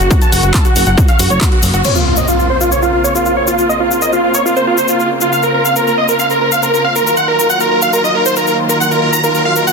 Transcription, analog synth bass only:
0, 0, Header, 1, 2, 480
1, 0, Start_track
1, 0, Key_signature, -5, "minor"
1, 0, Tempo, 434783
1, 117, Time_signature, 4, 2, 24, 8
1, 10737, End_track
2, 0, Start_track
2, 0, Title_t, "Analog synth bass"
2, 0, Program_c, 0, 38
2, 357, Note_on_c, 0, 30, 91
2, 457, Note_off_c, 0, 30, 0
2, 477, Note_on_c, 0, 30, 78
2, 577, Note_off_c, 0, 30, 0
2, 837, Note_on_c, 0, 30, 92
2, 937, Note_off_c, 0, 30, 0
2, 957, Note_on_c, 0, 30, 82
2, 1057, Note_off_c, 0, 30, 0
2, 1317, Note_on_c, 0, 30, 96
2, 1417, Note_off_c, 0, 30, 0
2, 1436, Note_on_c, 0, 30, 77
2, 1537, Note_off_c, 0, 30, 0
2, 1796, Note_on_c, 0, 30, 89
2, 1897, Note_off_c, 0, 30, 0
2, 1917, Note_on_c, 0, 30, 81
2, 2017, Note_off_c, 0, 30, 0
2, 10737, End_track
0, 0, End_of_file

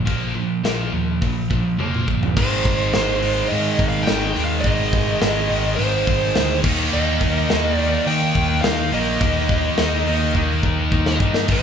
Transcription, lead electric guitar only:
0, 0, Header, 1, 2, 480
1, 0, Start_track
1, 0, Tempo, 571429
1, 59, Time_signature, 4, 2, 24, 8
1, 9765, End_track
2, 0, Start_track
2, 0, Title_t, "Lead electric guitar"
2, 0, Program_c, 0, 29
2, 1991, Note_on_c, 0, 72, 93
2, 2923, Note_on_c, 0, 75, 86
2, 2978, Note_off_c, 0, 72, 0
2, 3262, Note_on_c, 0, 77, 88
2, 3269, Note_off_c, 0, 75, 0
2, 3381, Note_off_c, 0, 77, 0
2, 3381, Note_on_c, 0, 79, 118
2, 3734, Note_off_c, 0, 79, 0
2, 3737, Note_on_c, 0, 77, 84
2, 3779, Note_off_c, 0, 77, 0
2, 3868, Note_on_c, 0, 75, 111
2, 4835, Note_off_c, 0, 75, 0
2, 4838, Note_on_c, 0, 72, 72
2, 5537, Note_off_c, 0, 72, 0
2, 5825, Note_on_c, 0, 75, 98
2, 6480, Note_off_c, 0, 75, 0
2, 6480, Note_on_c, 0, 74, 98
2, 6781, Note_on_c, 0, 79, 93
2, 6812, Note_off_c, 0, 74, 0
2, 7227, Note_off_c, 0, 79, 0
2, 7236, Note_on_c, 0, 77, 102
2, 7496, Note_off_c, 0, 77, 0
2, 7509, Note_on_c, 0, 75, 91
2, 9388, Note_off_c, 0, 75, 0
2, 9679, Note_on_c, 0, 72, 89
2, 9765, Note_off_c, 0, 72, 0
2, 9765, End_track
0, 0, End_of_file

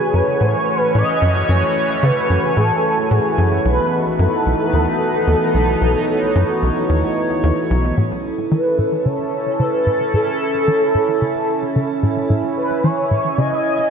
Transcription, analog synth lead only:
0, 0, Header, 1, 2, 480
1, 0, Start_track
1, 0, Tempo, 540541
1, 1320, Time_signature, 4, 2, 24, 8
1, 12343, End_track
2, 0, Start_track
2, 0, Title_t, "Analog synth lead"
2, 0, Program_c, 0, 81
2, 0, Note_on_c, 0, 68, 110
2, 122, Note_on_c, 0, 71, 95
2, 135, Note_off_c, 0, 68, 0
2, 355, Note_off_c, 0, 71, 0
2, 361, Note_on_c, 0, 73, 106
2, 807, Note_off_c, 0, 73, 0
2, 841, Note_on_c, 0, 75, 113
2, 1287, Note_off_c, 0, 75, 0
2, 1323, Note_on_c, 0, 73, 122
2, 1802, Note_on_c, 0, 71, 100
2, 1816, Note_off_c, 0, 73, 0
2, 2277, Note_off_c, 0, 71, 0
2, 2282, Note_on_c, 0, 69, 101
2, 2763, Note_on_c, 0, 68, 93
2, 2776, Note_off_c, 0, 69, 0
2, 3122, Note_off_c, 0, 68, 0
2, 3243, Note_on_c, 0, 71, 114
2, 3662, Note_off_c, 0, 71, 0
2, 3662, Note_on_c, 0, 71, 67
2, 3725, Note_on_c, 0, 69, 91
2, 3739, Note_off_c, 0, 71, 0
2, 4137, Note_off_c, 0, 69, 0
2, 4142, Note_on_c, 0, 71, 59
2, 4204, Note_on_c, 0, 69, 96
2, 4217, Note_off_c, 0, 71, 0
2, 6602, Note_off_c, 0, 69, 0
2, 7561, Note_on_c, 0, 71, 104
2, 8039, Note_on_c, 0, 73, 109
2, 8052, Note_off_c, 0, 71, 0
2, 8518, Note_on_c, 0, 71, 108
2, 8531, Note_off_c, 0, 73, 0
2, 8992, Note_off_c, 0, 71, 0
2, 8997, Note_on_c, 0, 69, 110
2, 10643, Note_off_c, 0, 69, 0
2, 11162, Note_on_c, 0, 71, 96
2, 11400, Note_on_c, 0, 73, 106
2, 11413, Note_off_c, 0, 71, 0
2, 11878, Note_on_c, 0, 75, 127
2, 11891, Note_off_c, 0, 73, 0
2, 12343, Note_off_c, 0, 75, 0
2, 12343, End_track
0, 0, End_of_file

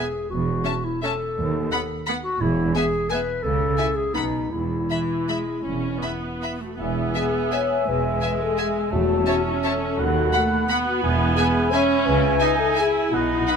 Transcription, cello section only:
0, 0, Header, 1, 2, 480
1, 0, Start_track
1, 0, Key_signature, 4, "major"
1, 0, Tempo, 346220
1, 437, Time_signature, 3, 2, 24, 8
1, 5245, Tempo, 374298
1, 10045, Tempo, 349040
1, 12445, Tempo, 382897
1, 12925, Tempo, 344037
1, 16765, Tempo, 361882
1, 18302, End_track
2, 0, Start_track
2, 0, Title_t, "Cello section"
2, 0, Program_c, 0, 48
2, 427, Note_on_c, 0, 40, 55
2, 821, Note_off_c, 0, 40, 0
2, 1900, Note_on_c, 0, 39, 57
2, 2292, Note_off_c, 0, 39, 0
2, 3336, Note_on_c, 0, 40, 64
2, 3729, Note_off_c, 0, 40, 0
2, 4769, Note_on_c, 0, 49, 60
2, 5161, Note_off_c, 0, 49, 0
2, 5713, Note_on_c, 0, 47, 47
2, 6107, Note_off_c, 0, 47, 0
2, 6189, Note_on_c, 0, 40, 39
2, 6594, Note_off_c, 0, 40, 0
2, 7648, Note_on_c, 0, 40, 39
2, 8044, Note_off_c, 0, 40, 0
2, 9102, Note_on_c, 0, 40, 49
2, 9487, Note_off_c, 0, 40, 0
2, 10522, Note_on_c, 0, 40, 51
2, 10916, Note_off_c, 0, 40, 0
2, 11967, Note_on_c, 0, 40, 47
2, 12361, Note_off_c, 0, 40, 0
2, 13401, Note_on_c, 0, 39, 58
2, 13796, Note_off_c, 0, 39, 0
2, 14861, Note_on_c, 0, 40, 60
2, 15251, Note_off_c, 0, 40, 0
2, 16299, Note_on_c, 0, 49, 68
2, 16687, Note_off_c, 0, 49, 0
2, 17716, Note_on_c, 0, 47, 63
2, 18115, Note_off_c, 0, 47, 0
2, 18302, End_track
0, 0, End_of_file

